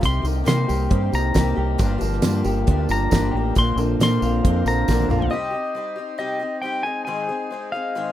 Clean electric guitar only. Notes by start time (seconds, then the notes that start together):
0.02 C3
0.25 D#3
0.47 A#3
0.68 G4
0.91 C4
1.13 D#3
1.35 A#3
1.57 G4
1.79 G2
2.01 F3
2.24 A#3
2.45 G4
2.67 D4
2.89 F3
3.11 A#3
3.32 G4
3.55 A#2
3.78 D3
4.00 A#3
4.22 F4
4.44 C4
4.65 D3
4.88 A#3
5.11 F4